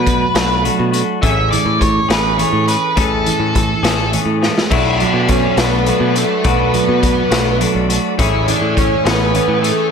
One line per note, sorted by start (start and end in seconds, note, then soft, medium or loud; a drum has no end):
0.00 0.25 B2 medium
0.00 0.94 B2 medium
0.00 0.35 A3 medium
0.00 0.36 A3 medium
0.00 0.34 D4 medium
0.00 0.33 F#4 medium
0.00 0.61 B4 medium
0.06 0.65 F#3 medium
0.06 kick medium
0.06 closed hi-hat medium
0.34 0.68 B1 medium
0.34 0.94 A3 medium
0.34 0.63 A3 medium
0.34 0.63 D4 medium
0.34 0.64 F#4 medium
0.34 snare loud
0.34 closed hi-hat medium
0.63 1.23 F#3 medium
0.63 1.21 A3 medium
0.63 0.93 D4 medium
0.63 0.91 F#4 medium
0.63 closed hi-hat medium
0.79 1.01 B2 medium
0.92 4.42 A3 medium
0.92 1.21 D4 medium
0.92 1.20 F#4 medium
0.92 closed hi-hat medium
1.21 1.55 A1 medium
1.21 2.68 A2 medium
1.21 2.10 E3 medium
1.21 2.10 A3 loud
1.21 2.08 C#4 loud
1.21 2.07 G#4 loud
1.21 1.50 E5 loud
1.21 kick medium
1.21 closed hi-hat medium
1.51 1.79 E3 medium
1.51 1.80 D5 loud
1.51 closed hi-hat medium
1.66 1.99 A2 medium
1.80 2.38 E3 medium
1.80 2.10 C#5 medium
1.80 kick medium
1.80 closed hi-hat soft
2.08 2.42 A1 medium
2.08 2.37 E3 medium
2.08 2.39 A3 medium
2.08 2.39 C#4 medium
2.08 2.39 G#4 medium
2.08 2.38 B4 medium
2.08 snare loud
2.08 closed hi-hat medium
2.38 2.94 E3 medium
2.38 3.25 E3 medium
2.38 2.69 A3 medium
2.38 2.67 C#4 medium
2.38 2.66 G#4 medium
2.38 2.67 C#5 medium
2.38 closed hi-hat medium
2.53 2.75 A2 medium
2.68 2.95 A3 medium
2.68 2.96 C#4 medium
2.68 2.97 G#4 medium
2.68 2.95 B4 medium
2.68 closed hi-hat medium
2.96 3.29 A1 medium
2.96 4.42 A2 medium
2.96 3.84 E3 medium
2.96 3.83 A3 medium
2.96 3.82 C#4 loud
2.96 3.82 G#4 medium
2.96 4.09 A4 medium
2.96 kick loud
2.96 closed hi-hat medium
3.26 3.53 E3 medium
3.26 closed hi-hat medium
3.40 3.73 A2 medium
3.54 4.12 E3 medium
3.54 kick medium
3.54 closed hi-hat medium
3.83 4.16 A1 medium
3.83 4.11 E3 medium
3.83 4.12 A3 medium
3.83 4.13 C#4 medium
3.83 4.13 G#4 medium
3.83 snare medium
3.83 closed hi-hat medium
4.12 4.69 E3 medium
4.12 4.71 E3 medium
4.12 4.43 A3 medium
4.12 4.41 C#4 medium
4.12 4.40 G#4 medium
4.12 closed hi-hat medium
4.26 4.48 A2 medium
4.42 4.71 G#3 medium
4.42 4.70 A3 medium
4.42 4.70 C#4 medium
4.42 4.69 G#4 medium
4.42 snare soft
4.58 snare medium
4.70 5.03 B1 medium
4.70 6.16 B2 medium
4.70 5.59 A3 medium
4.70 5.57 D4 medium
4.70 4.99 E4 loud
4.70 5.56 F#4 loud
4.70 8.15 A4 medium
4.70 8.15 D5 medium
4.70 8.15 B5 medium
4.70 kick loud
4.70 crash medium
5.00 5.28 F#3 medium
5.00 5.29 D4 medium
5.00 closed hi-hat soft
5.13 5.46 B2 medium
5.28 5.87 F#3 medium
5.28 5.59 C#4 medium
5.28 kick medium
5.28 closed hi-hat medium
5.57 5.90 B1 medium
5.57 6.16 A3 medium
5.57 5.85 A3 medium
5.57 6.16 B3 medium
5.57 5.86 D4 medium
5.57 5.87 F#4 medium
5.57 snare loud
5.57 closed hi-hat medium
5.86 6.73 F#3 medium
5.86 6.44 A3 medium
5.86 6.16 D4 medium
5.86 6.14 F#4 medium
5.86 closed hi-hat medium
6.00 6.23 B2 medium
6.15 7.32 A3 medium
6.15 6.45 A3 medium
6.15 6.44 D4 medium
6.15 6.45 F#4 medium
6.15 closed hi-hat medium
6.44 6.77 B1 medium
6.44 7.90 B2 medium
6.44 7.32 A3 loud
6.44 7.57 B3 medium
6.44 7.31 D4 medium
6.44 7.29 F#4 loud
6.44 kick loud
6.44 closed hi-hat medium
6.74 7.02 F#3 medium
6.74 closed hi-hat medium
6.88 7.21 B2 medium
7.03 7.59 F#3 medium
7.03 kick medium
7.03 closed hi-hat medium
7.30 7.64 B1 medium
7.30 7.90 A3 medium
7.30 7.59 A3 medium
7.30 7.60 D4 medium
7.30 7.61 F#4 medium
7.30 snare loud
7.30 closed hi-hat medium
7.60 8.19 F#3 medium
7.60 8.18 A3 medium
7.60 7.91 D4 medium
7.60 7.88 F#4 medium
7.60 closed hi-hat medium
7.75 7.97 B1 medium
7.89 9.91 A3 medium
7.89 8.18 D4 medium
7.89 8.17 F#4 medium
7.89 closed hi-hat medium
8.18 8.51 A1 medium
8.18 9.63 A2 medium
8.18 9.07 E3 medium
8.18 9.06 A3 loud
8.18 9.05 C#4 loud
8.18 8.48 E4 loud
8.18 9.04 G#4 medium
8.18 9.91 C#5 medium
8.18 9.91 E5 medium
8.18 9.91 G#5 medium
8.18 kick loud
8.18 closed hi-hat medium
8.47 8.75 E3 medium
8.47 8.76 D4 loud
8.47 closed hi-hat medium
8.61 8.94 A2 medium
8.76 9.33 E3 medium
8.76 9.07 C#4 medium
8.76 kick medium
8.76 closed hi-hat medium
9.04 9.38 A1 loud
9.04 9.33 E3 medium
9.04 9.34 A3 medium
9.04 9.60 B3 medium
9.04 9.34 C#4 medium
9.04 9.35 G#4 medium
9.04 snare loud
9.04 closed hi-hat medium
9.34 9.90 E3 medium
9.34 9.91 E3 medium
9.34 9.64 A3 medium
9.34 9.62 C#4 medium
9.34 9.61 G#4 medium
9.34 closed hi-hat medium
9.48 9.70 A2 medium
9.61 9.89 A3 medium
9.61 9.91 C#4 medium
9.61 9.91 G#4 medium
9.61 closed hi-hat medium
9.65 9.91 A3 medium